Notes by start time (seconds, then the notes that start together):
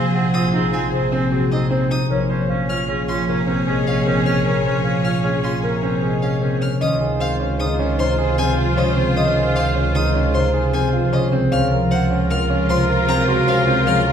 Already playing: A#1 C3 F3 F#3 G#3 G#4 C5
0.14 C4 F#5
0.34 C4 F4 D#6
0.53 F3 C4 D#4 G#4
0.73 C4 F4 G#5
0.92 C3 C4 G#4 C5
1.12 C4
1.32 F#3 C4 F#4 G#4
1.51 C4 D#4 D#5
1.71 C4 C5
1.91 D#4 D#6
2.10 A#1 F3 C#4 G#4 A#4 C#5
2.30 C#4 C5
2.49 C#4 F5
2.69 C#4 F4 F6
2.88 F3 C#4 G#4
3.08 C#4 F4 C6
3.28 C3 C#4 A#4
3.47 C4 C#4
3.67 G#3 C#4 G#4
3.87 C#4 F5
4.06 C#3 C4 C#4 A#4
4.26 C#4 F6
4.45 F3 C#4 A#4 C#5
4.65 C#4 C5
4.84 C#4 F5
5.04 C#4 F4 F6
5.24 F3 C#4 G#4
5.43 C#4 F4 C6
5.63 C3 C#4 A#4
5.83 C4 C#4
6.02 G#3 C#4 G#4
6.22 C#4 F5
6.42 C#3 C4 C#4 A#4
6.61 C#4 F6
6.81 C#2 D#3 C#4 F4 C5 D#5 D#6
7.01 G#4
7.20 C4 C5 F5
7.40 C#4
7.59 D#3 D#4 G#4 D#6
7.79 C#4
7.98 C3 D#4 C5 C6
8.18 G#4
8.38 F3 C4 G#4 G#5
8.57 F4
8.77 C#3 C#4 C5 D#5
8.96 C4
9.16 D#3 C#4 D#5 D#6
9.36 G#4
9.55 C4 C5 F5
9.75 C#4
9.95 D#3 D#4 G#4 D#6
10.14 C#4
10.34 C3 D#4 C5 C6
10.54 G#4
10.73 F3 C4 G#4 G#5
10.93 F4
11.12 C#3 C#4 C5 D#5
11.32 C4
11.52 C#2 F3 C#4 F4 A#4 F5 F6
11.71 A#4
11.91 C4 C5 F#5
12.11 C#4
12.30 F3 F4 A#4 F6
12.50 C#4
12.69 C3 F4 C5 C6
12.89 A#4
13.08 F#3 C4 A#4 A#5
13.28 F#4
13.47 C#3 C#4 C5 F5
13.67 C4
13.87 F3 C#4 F5 F6
14.06 A#4